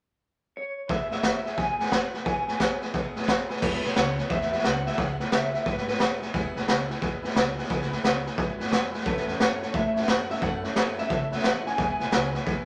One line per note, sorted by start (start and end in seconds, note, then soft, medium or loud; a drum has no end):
0.57 0.91 C#5 medium
0.88 1.11 E2 medium
0.88 1.11 B2 medium
0.88 1.11 E3 medium
0.88 1.10 G#3 medium
0.88 1.10 B3 medium
0.88 1.09 G#4 medium
0.88 1.02 B4 medium
0.88 1.02 E5 medium
0.88 1.12 E5 medium
0.88 1.02 G#5 loud
0.88 kick loud
0.88 snare soft
1.10 1.21 E3 soft
1.10 1.22 G#3 soft
1.10 1.22 B3 soft
1.10 1.23 G#4 medium
1.10 1.18 B4 medium
1.10 1.19 E5 medium
1.10 1.23 E5 medium
1.10 1.19 G#5 medium
1.10 snare soft
1.22 1.45 E3 medium
1.22 1.43 G#4 medium
1.22 1.37 B4 medium
1.22 1.55 E5 medium
1.22 1.37 E5 medium
1.22 1.37 G#5 medium
1.22 kick medium
1.22 snare loud
1.22 hi-hat pedal medium
1.44 1.56 E3 soft
1.44 1.57 G#3 soft
1.44 1.57 B3 soft
1.44 1.57 G#4 medium
1.44 1.52 B4 medium
1.44 1.53 E5 medium
1.44 1.53 G#5 medium
1.44 snare soft
1.57 1.79 E2 medium
1.57 1.79 B2 medium
1.57 1.79 E3 medium
1.57 1.79 G#3 medium
1.57 1.78 B3 medium
1.57 1.78 G#4 medium
1.57 1.71 B4 medium
1.57 1.71 E5 medium
1.57 1.89 G#5 loud
1.57 1.72 G#5 medium
1.57 kick loud
1.57 snare soft
1.79 1.90 E3 soft
1.79 1.90 G#3 soft
1.79 1.92 B3 soft
1.79 1.91 G#4 medium
1.79 1.86 B4 medium
1.79 1.87 E5 medium
1.79 1.87 G#5 medium
1.79 snare soft
1.86 snare soft
1.91 2.13 E3 medium
1.91 2.11 G#4 medium
1.91 2.23 F#5 medium
1.91 2.05 G#5 medium
1.91 kick medium
1.91 snare loud
1.91 hi-hat pedal medium
2.13 2.25 E3 soft
2.13 2.25 G#3 soft
2.13 2.25 B3 soft
2.13 2.25 G#4 medium
2.13 2.21 B4 medium
2.13 2.21 E5 medium
2.13 2.22 G#5 loud
2.13 snare soft
2.25 2.47 E2 medium
2.25 2.47 B2 medium
2.25 2.48 E3 medium
2.25 2.47 G#3 medium
2.25 2.47 B3 medium
2.25 2.46 G#4 medium
2.25 2.38 B4 loud
2.25 2.39 E5 medium
2.25 2.90 G#5 medium
2.25 2.39 G#5 loud
2.25 kick loud
2.25 snare soft
2.46 2.59 E3 soft
2.46 2.60 G#3 soft
2.46 2.60 B3 medium
2.46 2.59 G#4 medium
2.46 2.54 B4 medium
2.46 2.55 E5 medium
2.46 2.55 G#5 medium
2.46 snare soft
2.59 2.82 E3 medium
2.59 2.82 G#3 medium
2.59 2.82 B3 medium
2.59 2.80 G#4 medium
2.59 2.72 B4 medium
2.59 2.73 E5 medium
2.59 kick medium
2.59 snare loud
2.59 hi-hat pedal medium
2.80 2.94 G#3 soft
2.80 2.94 B3 medium
2.80 2.94 G#4 medium
2.80 2.88 B4 loud
2.80 2.89 E5 loud
2.80 2.89 G#5 loud
2.80 snare soft
2.84 2.94 E3 soft
2.93 3.16 E2 medium
2.93 3.16 B2 medium
2.93 3.16 E3 medium
2.93 3.15 G#3 medium
2.93 3.15 B3 medium
2.93 3.14 G#4 loud
2.93 3.07 B4 medium
2.93 3.07 E5 medium
2.93 3.08 G#5 loud
2.93 kick loud
2.93 snare soft
3.15 3.26 E3 soft
3.15 3.26 G#3 medium
3.15 3.27 B3 medium
3.15 3.28 G#4 medium
3.15 3.23 B4 loud
3.15 3.23 E5 medium
3.15 3.24 G#5 loud
3.15 snare soft
3.22 snare soft
3.27 3.49 E3 medium
3.27 3.50 G#3 medium
3.27 3.49 B3 medium
3.27 3.48 G#4 medium
3.27 3.41 B4 medium
3.27 3.42 E5 medium
3.27 3.42 G#5 loud
3.27 kick medium
3.27 snare loud
3.27 hi-hat pedal medium
3.49 3.60 E3 soft
3.49 3.61 G#3 soft
3.49 3.61 B3 medium
3.49 3.62 G#4 medium
3.49 3.57 B4 loud
3.49 3.57 E5 loud
3.49 3.58 G#5 loud
3.49 snare soft
3.56 snare soft
3.61 3.77 E1 loud
3.61 3.83 E2 medium
3.61 3.83 B2 medium
3.61 3.84 E3 medium
3.61 3.84 G#3 medium
3.61 3.83 B3 medium
3.61 3.82 E4 medium
3.61 3.75 B4 loud
3.61 3.96 B4 medium
3.61 3.75 E5 medium
3.61 3.76 G#5 loud
3.61 kick loud
3.61 snare soft
3.61 crash loud
3.83 3.92 B1 medium
3.83 3.94 E3 soft
3.83 3.95 G#3 soft
3.83 3.95 B3 medium
3.83 3.95 E4 medium
3.83 3.90 B4 medium
3.83 3.91 E5 medium
3.83 3.91 G#5 medium
3.83 snare soft
3.95 4.19 C#2 medium
3.95 4.17 E2 medium
3.95 4.18 B2 medium
3.95 4.18 E3 medium
3.95 4.17 G#3 medium
3.95 4.17 B3 medium
3.95 4.16 E4 medium
3.95 4.09 B4 medium
3.95 4.31 C#5 medium
3.95 4.09 E5 medium
3.95 4.09 G#5 medium
3.95 snare loud
3.95 hi-hat pedal medium
4.17 4.28 E3 soft
4.17 4.29 G#3 soft
4.17 4.30 B3 soft
4.17 4.30 E4 medium
4.17 4.25 B4 medium
4.17 4.25 E5 medium
4.17 4.25 G#5 medium
4.17 snare soft
4.29 4.53 E2 medium
4.29 4.51 E3 medium
4.29 4.52 G#3 medium
4.29 4.52 B3 medium
4.29 4.51 E4 medium
4.29 4.43 B4 medium
4.29 4.43 E5 medium
4.29 4.65 E5 loud
4.29 4.43 G#5 loud
4.29 kick loud
4.29 snare soft
4.41 snare soft
4.50 4.64 E3 soft
4.50 4.64 G#3 soft
4.50 4.64 B3 soft
4.50 4.64 E4 medium
4.50 4.58 B4 medium
4.50 4.59 E5 medium
4.50 4.59 B5 medium
4.50 snare soft
4.58 snare soft
4.62 4.86 C#2 loud
4.62 4.86 B2 medium
4.62 4.86 E3 medium
4.62 4.87 G#3 medium
4.62 4.85 B3 medium
4.62 4.85 E4 medium
4.62 4.76 B4 medium
4.62 4.77 E5 medium
4.62 4.87 F#5 loud
4.62 4.77 G#5 medium
4.62 snare medium
4.62 hi-hat pedal medium
4.85 4.97 E3 soft
4.85 4.98 G#3 soft
4.85 4.98 B3 soft
4.85 4.98 E4 soft
4.85 4.93 B4 medium
4.85 4.93 E5 medium
4.85 5.00 E5 loud
4.85 4.94 G#5 medium
4.85 snare soft
4.92 snare soft
4.97 5.20 C#2 medium
4.97 5.19 E2 medium
4.97 5.20 B2 medium
4.97 5.20 E3 medium
4.97 5.20 G#3 medium
4.97 5.20 B3 medium
4.97 5.19 E4 medium
4.97 5.11 B4 medium
4.97 5.11 E5 medium
4.97 5.33 F#5 loud
4.97 5.12 G#5 loud
4.97 kick loud
4.97 snare soft
5.19 5.31 E3 soft
5.19 5.31 G#3 medium
5.19 5.31 B3 medium
5.19 5.32 E4 medium
5.19 5.26 B4 medium
5.19 5.27 E5 medium
5.19 5.27 G#5 medium
5.19 snare soft
5.32 5.54 C#2 medium
5.32 5.54 E2 medium
5.32 5.54 B2 medium
5.32 5.54 E3 medium
5.32 5.54 G#3 medium
5.32 5.53 B3 medium
5.32 5.53 E4 medium
5.32 5.45 B4 medium
5.32 5.64 E5 loud
5.32 5.46 G#5 medium
5.32 snare loud
5.32 hi-hat pedal medium
5.53 5.65 E3 soft
5.53 5.65 G#3 soft
5.53 5.66 B3 medium
5.53 5.66 E4 medium
5.53 5.61 B4 medium
5.53 5.61 E5 medium
5.53 5.62 G#5 medium
5.53 snare soft
5.65 5.88 G#1 medium
5.65 5.88 E3 medium
5.65 5.88 G#3 medium
5.65 5.87 B3 medium
5.65 5.86 E4 medium
5.65 5.79 B4 loud
5.65 5.87 B4 medium
5.65 5.79 E5 medium
5.65 5.80 G#5 loud
5.65 kick loud
5.65 snare soft
5.77 snare soft
5.87 5.99 E3 soft
5.87 5.99 G#3 medium
5.87 6.00 B3 soft
5.87 6.00 E4 medium
5.87 5.95 B4 medium
5.87 6.20 B4 medium
5.87 5.95 E5 medium
5.87 5.96 G#5 medium
5.87 snare soft
5.94 snare soft
5.99 6.23 E1 medium
5.99 6.21 E2 medium
5.99 6.22 E3 medium
5.99 6.22 G#3 medium
5.99 6.22 B3 medium
5.99 6.21 E4 medium
5.99 6.13 E5 medium
5.99 6.14 G#5 medium
5.99 snare loud
5.99 hi-hat pedal medium
6.21 6.33 E3 soft
6.21 6.34 G#3 soft
6.21 6.34 B3 soft
6.21 6.34 E4 medium
6.21 6.29 B4 medium
6.21 6.29 E5 medium
6.21 6.29 G#5 medium
6.21 snare soft
6.33 6.49 E1 loud
6.33 6.56 E2 loud
6.33 6.56 B2 medium
6.33 6.56 E3 loud
6.33 6.56 G#3 loud
6.33 6.55 B3 loud
6.33 6.54 E4 medium
6.33 6.46 B4 loud
6.33 6.47 E5 loud
6.33 6.47 G#5 loud
6.33 kick loud
6.33 snare soft
6.55 6.64 B1 medium
6.55 6.68 E3 medium
6.55 6.68 G#3 medium
6.55 6.68 B3 medium
6.55 6.68 E4 medium
6.55 6.63 B4 medium
6.55 6.63 E5 medium
6.55 6.63 G#5 loud
6.55 snare soft
6.67 6.91 C#2 medium
6.67 6.90 E2 medium
6.67 6.90 B2 medium
6.67 6.90 E3 medium
6.67 6.89 G#3 loud
6.67 6.89 B3 medium
6.67 6.88 E4 medium
6.67 6.81 B4 medium
6.67 6.81 E5 medium
6.67 6.82 G#5 loud
6.67 snare loud
6.67 hi-hat pedal medium
6.89 7.00 E3 soft
6.89 7.01 G#3 medium
6.89 7.01 B3 medium
6.89 7.01 E4 medium
6.89 6.97 B4 medium
6.89 6.97 E5 medium
6.89 6.98 G#5 loud
6.89 snare soft
7.00 7.24 E2 medium
7.00 7.23 E3 medium
7.00 7.24 G#3 medium
7.00 7.23 B3 medium
7.00 7.22 E4 medium
7.00 7.14 B4 loud
7.00 7.15 E5 loud
7.00 7.15 G#5 loud
7.00 kick loud
7.00 snare soft
7.22 7.35 E3 soft
7.22 7.35 G#3 medium
7.22 7.36 B3 medium
7.22 7.35 E4 medium
7.22 7.30 B4 loud
7.22 7.31 E5 medium
7.22 7.31 G#5 loud
7.22 snare soft
7.30 snare soft
7.35 7.58 C#2 medium
7.35 7.58 E2 medium
7.35 7.58 B2 medium
7.35 7.58 E3 medium
7.35 7.57 G#3 medium
7.35 7.57 B3 loud
7.35 7.56 E4 loud
7.35 7.48 B4 medium
7.35 7.49 E5 medium
7.35 7.49 G#5 loud
7.35 snare loud
7.35 hi-hat pedal medium
7.56 7.69 E3 soft
7.56 7.69 G#3 medium
7.56 7.69 B3 soft
7.56 7.69 E4 medium
7.56 7.64 B4 medium
7.56 7.65 E5 medium
7.56 7.65 G#5 loud
7.56 snare soft
7.64 snare soft
7.69 7.93 C#2 loud
7.69 7.91 E2 loud
7.69 7.91 B2 medium
7.69 7.91 E3 loud
7.69 7.91 G#3 loud
7.69 7.90 B3 loud
7.69 7.89 E4 loud
7.69 7.82 B4 loud
7.69 7.83 E5 loud
7.69 7.83 G#5 loud
7.69 kick loud
7.69 snare soft
7.82 snare soft
7.90 8.03 E3 medium
7.90 8.03 G#3 medium
7.90 8.03 B3 medium
7.90 8.03 E4 medium
7.90 7.99 B4 medium
7.90 7.99 E5 medium
7.90 7.99 G#5 medium
7.90 snare soft
8.03 8.27 C#2 medium
8.03 8.25 E2 medium
8.03 8.25 B2 medium
8.03 8.26 E3 medium
8.03 8.25 G#3 medium
8.03 8.24 B3 medium
8.03 8.24 E4 loud
8.03 8.17 B4 medium
8.03 8.17 E5 medium
8.03 8.18 G#5 medium
8.03 snare loud
8.03 hi-hat pedal medium
8.25 8.36 E3 soft
8.25 8.37 G#3 medium
8.25 8.37 B3 medium
8.25 8.37 E4 medium
8.25 8.33 B4 medium
8.25 8.33 E5 medium
8.25 8.34 G#5 loud
8.25 snare soft
8.37 8.60 G#1 medium
8.37 8.59 E3 medium
8.37 8.59 G#3 medium
8.37 8.59 B3 medium
8.37 8.58 E4 medium
8.37 8.51 B4 loud
8.37 8.51 E5 loud
8.37 8.52 G#5 loud
8.37 kick loud
8.37 snare soft
8.58 8.70 E3 soft
8.58 8.71 G#3 medium
8.58 8.71 B3 medium
8.58 8.71 E4 medium
8.58 8.66 B4 medium
8.58 8.67 E5 medium
8.58 8.67 G#5 loud
8.58 snare soft
8.66 8.84 B4 medium
8.66 snare soft
8.71 8.94 E1 loud
8.71 8.93 E2 medium
8.71 8.93 B2 medium
8.71 8.94 E3 medium
8.71 8.94 G#3 medium
8.71 8.94 B3 medium
8.71 8.93 E4 medium
8.71 8.84 E5 medium
8.71 8.85 G#5 loud
8.71 snare loud
8.71 hi-hat pedal medium
8.91 9.06 G#3 soft
8.91 9.06 B3 medium
8.91 9.06 E4 medium
8.91 9.00 B4 medium
8.91 9.01 E5 medium
8.91 9.01 G#5 loud
8.91 snare soft
8.96 9.04 E3 soft
9.00 snare soft
9.05 9.20 A1 loud
9.05 9.28 A2 medium
9.05 9.28 E3 medium
9.05 9.28 A3 medium
9.05 9.26 C#4 loud
9.05 9.25 E4 medium
9.05 9.41 B4 medium
9.05 9.18 C#5 medium
9.05 9.19 E5 medium
9.05 9.19 A5 loud
9.05 kick loud
9.05 snare soft
9.17 snare soft
9.26 9.36 E2 medium
9.26 9.39 A3 soft
9.26 9.39 C#4 medium
9.26 9.39 E4 medium
9.26 9.34 C#5 medium
9.26 9.35 E5 medium
9.26 9.35 A5 medium
9.26 snare soft
9.39 9.62 F#2 loud
9.39 9.61 A2 medium
9.39 9.62 E3 medium
9.39 9.62 A3 medium
9.39 9.61 C#4 medium
9.39 9.60 E4 medium
9.39 9.53 C#5 medium
9.39 9.76 C#5 medium
9.39 9.53 E5 medium
9.39 9.54 A5 medium
9.39 snare loud
9.39 hi-hat pedal medium
9.61 9.74 A3 soft
9.61 9.74 C#4 soft
9.61 9.74 E4 medium
9.61 9.69 C#5 medium
9.61 9.69 E5 medium
9.61 9.70 A5 medium
9.61 snare soft
9.73 9.96 A2 loud
9.73 9.96 E3 medium
9.73 9.96 A3 medium
9.73 9.96 C#4 medium
9.73 9.95 E4 medium
9.73 9.86 C#5 loud
9.73 9.87 E5 medium
9.73 10.08 E5 medium
9.73 9.88 A5 loud
9.73 kick loud
9.73 snare soft
9.95 10.07 A3 soft
9.95 10.08 C#4 soft
9.95 10.08 E4 medium
9.95 10.03 C#5 medium
9.95 10.03 E5 medium
9.95 10.03 A5 medium
9.95 snare soft
10.02 snare soft
10.07 10.31 F#2 medium
10.07 10.30 A2 medium
10.07 10.30 E3 medium
10.07 10.30 A3 medium
10.07 10.29 C#4 medium
10.07 10.27 E4 medium
10.07 10.21 C#5 medium
10.07 10.31 F#5 medium
10.07 10.21 A5 medium
10.07 snare loud
10.07 hi-hat pedal medium
10.28 10.41 A3 soft
10.28 10.41 C#4 medium
10.28 10.41 E4 medium
10.28 10.37 C#5 medium
10.28 10.37 E5 medium
10.28 10.36 E5 medium
10.28 10.38 A5 medium
10.28 snare soft
10.36 snare soft
10.41 10.65 F#2 loud
10.41 10.64 A2 medium
10.41 10.64 E3 medium
10.41 10.64 A3 medium
10.41 10.64 C#4 medium
10.41 10.63 E4 medium
10.41 10.55 C#5 loud
10.41 10.55 E5 medium
10.41 10.74 F#5 loud
10.41 10.56 A5 loud
10.41 kick loud
10.41 snare soft
10.63 10.75 A3 soft
10.63 10.76 C#4 soft
10.63 10.76 E4 medium
10.63 10.71 C#5 medium
10.63 10.72 E5 medium
10.63 10.72 A5 medium
10.63 snare soft
10.74 10.99 F#2 medium
10.74 10.98 A2 medium
10.74 10.98 E3 medium
10.74 10.98 A3 medium
10.74 10.97 C#4 medium
10.74 10.95 E4 medium
10.74 10.89 C#5 medium
10.74 10.89 E5 medium
10.74 10.90 A5 medium
10.74 snare loud
10.74 hi-hat pedal medium
10.96 11.09 A3 soft
10.96 11.10 C#4 soft
10.96 11.09 E4 medium
10.96 11.05 C#5 medium
10.96 11.05 E5 medium
10.96 11.45 E5 loud
10.96 11.06 A5 medium
10.96 snare soft
11.09 11.33 C#2 medium
11.09 11.32 E3 medium
11.09 11.32 A3 medium
11.09 11.31 C#4 medium
11.09 11.29 E4 medium
11.09 11.23 C#5 loud
11.09 11.23 E5 medium
11.09 11.24 A5 loud
11.09 kick loud
11.09 snare soft
11.31 11.43 A3 soft
11.31 11.43 C#4 soft
11.31 11.44 E4 medium
11.31 11.40 C#5 medium
11.31 11.40 E5 medium
11.31 11.40 A5 medium
11.31 snare soft
11.38 snare soft
11.43 11.67 A1 medium
11.43 11.66 A2 medium
11.43 11.66 E3 medium
11.43 11.65 A3 medium
11.43 11.64 C#4 medium
11.43 11.63 E4 medium
11.43 11.57 C#5 medium
11.43 11.57 E5 medium
11.43 11.65 F#5 medium
11.43 11.58 A5 medium
11.43 snare loud
11.43 hi-hat pedal medium
11.65 11.78 A3 soft
11.65 11.78 C#4 soft
11.65 11.77 E4 soft
11.65 11.73 C#5 medium
11.65 11.74 E5 medium
11.65 12.65 G#5 loud
11.65 11.74 A5 medium
11.65 snare soft
11.77 11.93 E1 loud
11.77 12.00 E2 medium
11.77 12.00 B2 medium
11.77 12.00 E3 medium
11.77 11.99 G#3 medium
11.77 11.99 B3 medium
11.77 11.98 E4 medium
11.77 11.91 B4 loud
11.77 11.92 E5 medium
11.77 11.92 G#5 loud
11.77 kick loud
11.77 snare soft
11.99 12.08 B1 medium
11.99 12.11 E3 medium
11.99 12.11 G#3 soft
11.99 12.12 B3 medium
11.99 12.12 E4 medium
11.99 12.07 B4 medium
11.99 12.08 E5 medium
11.99 12.08 G#5 medium
11.99 snare soft
12.11 12.36 C#2 medium
12.11 12.34 E2 medium
12.11 12.34 B2 medium
12.11 12.34 E3 medium
12.11 12.34 G#3 loud
12.11 12.32 B3 medium
12.11 12.31 E4 loud
12.11 12.25 B4 medium
12.11 12.26 E5 medium
12.11 12.26 G#5 loud
12.11 snare loud
12.11 hi-hat pedal medium
12.33 12.44 E3 soft
12.33 12.45 G#3 medium
12.33 12.46 B3 medium
12.33 12.46 E4 medium
12.33 12.42 B4 medium
12.33 12.42 E5 medium
12.33 12.42 G#5 loud
12.33 snare soft
12.45 12.65 E2 loud
12.45 12.65 E3 medium
12.45 12.65 G#3 medium
12.45 12.65 B3 medium
12.45 12.65 E4 medium
12.45 12.59 B4 loud
12.45 12.60 E5 loud
12.45 12.60 G#5 loud
12.45 kick loud
12.45 snare soft